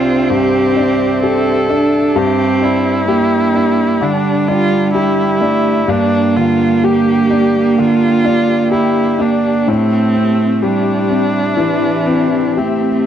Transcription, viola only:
0.00 0.31 F4 medium
0.30 1.22 G4 medium
1.23 2.19 A4 medium
2.17 2.65 G4 medium
2.64 4.04 E4 medium
4.03 4.49 D4 medium
4.48 4.94 F4 medium
4.94 5.91 E4 medium
5.89 6.38 D4 medium
6.36 6.85 F4 medium
6.84 7.80 G4 medium
7.79 8.72 F4 medium
8.73 9.22 E4 medium
9.21 9.70 D4 medium
9.68 10.64 C4 medium
10.62 12.59 D4 medium
12.58 13.06 C4 medium

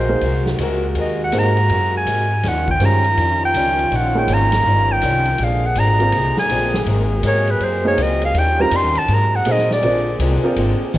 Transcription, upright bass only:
0.00 0.21 A#1 medium
0.21 0.58 C2 medium
0.59 0.94 C#2 medium
0.95 1.31 D#2 medium
1.33 1.69 G#2 medium
1.70 2.05 F#2 medium
2.06 2.42 G#2 loud
2.43 2.79 D#2 medium
2.80 3.16 G2 medium
3.17 3.53 F2 medium
3.54 3.90 C#2 medium
3.91 4.27 A#1 medium
4.28 4.64 G#1 medium
4.65 5.01 G1 medium
5.02 5.38 C2 medium
5.38 5.75 A#1 medium
5.76 6.12 G#1 loud
6.13 6.35 C2 medium
6.37 muted upright bass stroke soft
6.49 6.85 A#1 loud
6.86 7.22 G#1 loud
7.23 7.59 G#2 loud
7.60 7.96 F#2 medium
7.97 8.33 C#2 medium
8.34 8.70 D#2 medium
8.71 8.84 F2 loud
8.84 8.96 D#2 medium
8.97 9.08 C#2 medium
9.08 9.45 G#2 loud
9.45 9.81 A#2 loud
9.82 10.18 A#1 medium
10.19 10.42 C2 loud
10.43 muted upright bass stroke soft
10.56 10.79 G#1 medium
10.80 muted upright bass stroke soft
10.94 10.98 A#1 medium

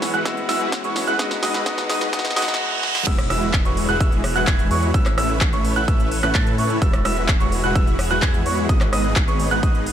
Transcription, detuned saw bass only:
3.07 3.28 E1 medium
3.30 3.63 E1 medium
3.65 3.86 E1 loud
3.89 3.98 E1 loud
4.00 4.33 E1 medium
4.36 4.45 E1 medium
4.47 4.68 E1 medium
4.71 4.92 E2 loud
4.94 5.15 A1 loud
5.18 5.50 A1 loud
5.53 5.74 A1 loud
5.76 5.86 A1 loud
5.88 6.21 A1 loud
6.23 6.32 A1 loud
6.35 6.56 A2 medium
6.58 6.79 A2 loud
6.82 7.03 E1 loud
7.05 7.38 E1 medium
7.40 7.61 E1 loud
7.64 7.73 E1 loud
7.75 8.08 E1 loud
8.11 8.20 E1 loud
8.22 8.43 E2 loud
8.46 8.67 E2 loud
8.69 8.90 G#1 medium
8.93 9.25 G#1 medium
9.28 9.49 G#1 medium
9.51 9.61 G#1 loud
9.63 9.92 G#1 loud

